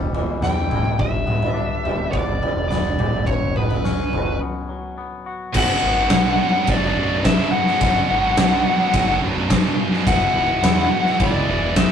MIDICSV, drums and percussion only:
0, 0, Header, 1, 2, 480
1, 0, Start_track
1, 0, Tempo, 567108
1, 840, Time_signature, 4, 2, 24, 8
1, 10088, End_track
2, 0, Start_track
2, 0, Title_t, "Drums"
2, 123, Note_on_c, 9, 43, 80
2, 208, Note_off_c, 9, 43, 0
2, 358, Note_on_c, 9, 43, 80
2, 359, Note_on_c, 9, 38, 69
2, 443, Note_off_c, 9, 43, 0
2, 444, Note_off_c, 9, 38, 0
2, 602, Note_on_c, 9, 43, 83
2, 602, Note_on_c, 9, 47, 71
2, 687, Note_off_c, 9, 43, 0
2, 687, Note_off_c, 9, 47, 0
2, 720, Note_on_c, 9, 47, 72
2, 804, Note_off_c, 9, 47, 0
2, 838, Note_on_c, 9, 43, 73
2, 841, Note_on_c, 9, 36, 93
2, 923, Note_off_c, 9, 43, 0
2, 925, Note_off_c, 9, 36, 0
2, 1077, Note_on_c, 9, 47, 73
2, 1162, Note_off_c, 9, 47, 0
2, 1206, Note_on_c, 9, 43, 80
2, 1291, Note_off_c, 9, 43, 0
2, 1568, Note_on_c, 9, 43, 76
2, 1653, Note_off_c, 9, 43, 0
2, 1803, Note_on_c, 9, 43, 78
2, 1806, Note_on_c, 9, 36, 88
2, 1888, Note_off_c, 9, 43, 0
2, 1891, Note_off_c, 9, 36, 0
2, 2055, Note_on_c, 9, 43, 76
2, 2140, Note_off_c, 9, 43, 0
2, 2290, Note_on_c, 9, 43, 78
2, 2291, Note_on_c, 9, 38, 74
2, 2375, Note_off_c, 9, 43, 0
2, 2376, Note_off_c, 9, 38, 0
2, 2529, Note_on_c, 9, 43, 82
2, 2529, Note_on_c, 9, 47, 74
2, 2613, Note_off_c, 9, 43, 0
2, 2613, Note_off_c, 9, 47, 0
2, 2649, Note_on_c, 9, 47, 67
2, 2733, Note_off_c, 9, 47, 0
2, 2764, Note_on_c, 9, 43, 73
2, 2770, Note_on_c, 9, 36, 95
2, 2849, Note_off_c, 9, 43, 0
2, 2854, Note_off_c, 9, 36, 0
2, 3013, Note_on_c, 9, 43, 69
2, 3013, Note_on_c, 9, 47, 63
2, 3098, Note_off_c, 9, 43, 0
2, 3098, Note_off_c, 9, 47, 0
2, 3136, Note_on_c, 9, 43, 81
2, 3221, Note_off_c, 9, 43, 0
2, 3253, Note_on_c, 9, 38, 68
2, 3338, Note_off_c, 9, 38, 0
2, 3496, Note_on_c, 9, 43, 72
2, 3581, Note_off_c, 9, 43, 0
2, 4689, Note_on_c, 9, 49, 121
2, 4696, Note_on_c, 9, 36, 106
2, 4774, Note_off_c, 9, 49, 0
2, 4781, Note_off_c, 9, 36, 0
2, 5163, Note_on_c, 9, 53, 73
2, 5164, Note_on_c, 9, 38, 127
2, 5247, Note_off_c, 9, 53, 0
2, 5248, Note_off_c, 9, 38, 0
2, 5647, Note_on_c, 9, 53, 76
2, 5654, Note_on_c, 9, 36, 105
2, 5732, Note_off_c, 9, 53, 0
2, 5739, Note_off_c, 9, 36, 0
2, 6134, Note_on_c, 9, 36, 77
2, 6135, Note_on_c, 9, 53, 81
2, 6136, Note_on_c, 9, 38, 122
2, 6218, Note_off_c, 9, 36, 0
2, 6220, Note_off_c, 9, 53, 0
2, 6221, Note_off_c, 9, 38, 0
2, 6495, Note_on_c, 9, 38, 34
2, 6580, Note_off_c, 9, 38, 0
2, 6609, Note_on_c, 9, 53, 77
2, 6612, Note_on_c, 9, 36, 106
2, 6693, Note_off_c, 9, 53, 0
2, 6696, Note_off_c, 9, 36, 0
2, 7087, Note_on_c, 9, 53, 87
2, 7088, Note_on_c, 9, 38, 127
2, 7172, Note_off_c, 9, 53, 0
2, 7173, Note_off_c, 9, 38, 0
2, 7563, Note_on_c, 9, 53, 80
2, 7565, Note_on_c, 9, 36, 110
2, 7647, Note_off_c, 9, 53, 0
2, 7649, Note_off_c, 9, 36, 0
2, 8043, Note_on_c, 9, 36, 81
2, 8043, Note_on_c, 9, 53, 83
2, 8044, Note_on_c, 9, 38, 118
2, 8128, Note_off_c, 9, 36, 0
2, 8128, Note_off_c, 9, 53, 0
2, 8129, Note_off_c, 9, 38, 0
2, 8411, Note_on_c, 9, 38, 33
2, 8495, Note_off_c, 9, 38, 0
2, 8521, Note_on_c, 9, 36, 117
2, 8525, Note_on_c, 9, 53, 78
2, 8606, Note_off_c, 9, 36, 0
2, 8609, Note_off_c, 9, 53, 0
2, 9001, Note_on_c, 9, 53, 88
2, 9002, Note_on_c, 9, 38, 118
2, 9086, Note_off_c, 9, 53, 0
2, 9087, Note_off_c, 9, 38, 0
2, 9364, Note_on_c, 9, 38, 36
2, 9448, Note_off_c, 9, 38, 0
2, 9477, Note_on_c, 9, 53, 68
2, 9479, Note_on_c, 9, 36, 114
2, 9562, Note_off_c, 9, 53, 0
2, 9563, Note_off_c, 9, 36, 0
2, 9955, Note_on_c, 9, 53, 87
2, 9956, Note_on_c, 9, 38, 122
2, 9957, Note_on_c, 9, 36, 78
2, 10040, Note_off_c, 9, 53, 0
2, 10041, Note_off_c, 9, 36, 0
2, 10041, Note_off_c, 9, 38, 0
2, 10088, End_track
0, 0, End_of_file